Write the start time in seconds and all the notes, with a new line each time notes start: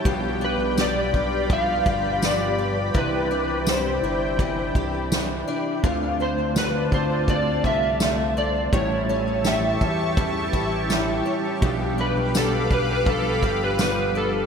Already playing: E3 G3 C#4 G5
0.04 B1 B2 F3 G3 D4 F4 G4 D5 B5, kick, ride
0.41 D4 B4, ride
0.59 B1
0.78 B3 D5, snare, ride, tambourine
1.13 B1 D4 F4, kick
1.17 G3
1.49 F3 G3 D4 F4 F5, kick, ride
1.86 G1 G4, kick, ride
2.21 F3 G3 B3 D4 F4 D5, snare, ride, tambourine
2.58 D4
2.94 C2 C3 E3 D4 E4 G4 B4 G5, kick, ride
3.31 D4, ride
3.67 C5, snare, ride, tambourine
4.02 G1 D4 E4, ride
4.38 E3 D4 E4, kick, ride
4.75 C2 G4, kick, ride
5.11 E3 D4 E4, snare, tambourine
5.48 D4
5.83 D2 D3 A3 C4 F4 D5 A5, kick, ride
6.20 C4 C5
6.37 D2
6.56 A3 B4, snare, tambourine
6.91 D2 C4 F4 C5, kick
6.95 A3
7.28 D3 A3 C4 D5, kick, ride
7.32 F4
7.64 C2 F4 E5, kick
8.00 D3 A3 C4 F4, snare, ride, tambourine
8.36 C4 D5, ride
8.72 A1 A2 E3 G3 C#4 E4 G4 C#5 E5 A5 C#6, kick, ride
9.09 C#4, ride
9.44 G3 E5, snare, tambourine
9.80 E2 C#4 E4, kick, ride
9.84 G3
10.16 E3 G3 C#4 E4, kick, ride
10.53 A1 E4, kick
10.89 E3 G3 C#4, snare, ride, tambourine
10.93 E4
11.26 C#4, ride
11.60 B1 B2 F3 G3 G4 F5 B5 D6, kick
11.65 D4 F4
11.98 D4 B4, ride
12.16 B1
12.34 B3 A4, snare, ride, tambourine
12.71 B1 D4 B4, kick
12.91 B4
13.06 F3 G3 D4 F4 A4, kick, ride
13.42 G1 G4, kick, ride
13.64 B4
13.78 F3 G3 B3 D4 F4 B4, snare, tambourine
14.15 D4 A4, ride